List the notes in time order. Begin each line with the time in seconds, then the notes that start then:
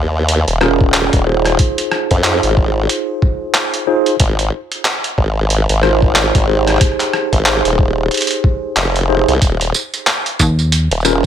Already playing: D#2
0.29 closed hi-hat
0.48 D#1, closed hi-hat
0.61 C#4 F4 G#4 A#4, cross-stick
0.81 kick
0.94 D#1, clap, closed hi-hat
1.13 D#1, kick, closed hi-hat
1.26 D#4 F4 G#4 C5
1.45 cross-stick, closed hi-hat
1.59 kick, closed hi-hat
1.78 closed hi-hat
1.92 cross-stick
2.11 F2, kick, closed hi-hat
2.24 D#4 F4 G#4 C5, clap, closed hi-hat
2.43 G#1, closed hi-hat
2.57 kick
2.89 closed hi-hat
3.22 kick
3.54 clap, closed hi-hat
3.74 closed hi-hat
3.87 D#4 F4 G#4 C5
4.06 closed hi-hat
4.20 G#1, kick, closed hi-hat
4.39 closed hi-hat
4.72 closed hi-hat
4.85 clap, closed hi-hat
5.04 closed hi-hat
5.18 G#1, kick
5.50 closed hi-hat
5.69 G#1, closed hi-hat
5.83 D#4 F4 A#4 C5, cross-stick
6.02 kick
6.16 G#1, clap, closed hi-hat
6.35 G#1, kick, closed hi-hat
6.49 D#4 G4 G#4 C5
6.67 cross-stick, closed hi-hat
6.70 cross-stick
6.76 cross-stick
6.81 kick, cross-stick, closed hi-hat
6.87 cross-stick
6.92 cross-stick
7.00 clap, closed hi-hat
7.13 cross-stick
7.33 G#1, kick, closed hi-hat
7.46 D#4 G4 G#4 C5, clap, closed hi-hat
7.65 D#1, closed hi-hat
7.79 kick
8.11 closed hi-hat
8.14 closed hi-hat
8.17 closed hi-hat
8.21 closed hi-hat
8.27 closed hi-hat
8.31 closed hi-hat
8.44 kick
8.77 F1, clap, closed hi-hat
8.96 closed hi-hat
9.09 D#4 G4 G#4 C5
9.28 C2, closed hi-hat
9.42 D#1, kick, closed hi-hat, tambourine
9.61 closed hi-hat, tambourine
9.74 tambourine
9.94 closed hi-hat, tambourine
10.07 clap, closed hi-hat, tambourine
10.26 closed hi-hat, tambourine
10.39 D#2, kick, tambourine
10.59 tambourine
10.72 closed hi-hat, tambourine
10.91 D#1, closed hi-hat, tambourine
11.01 tambourine
11.05 C#4 F4 G#4 A#4, cross-stick, tambourine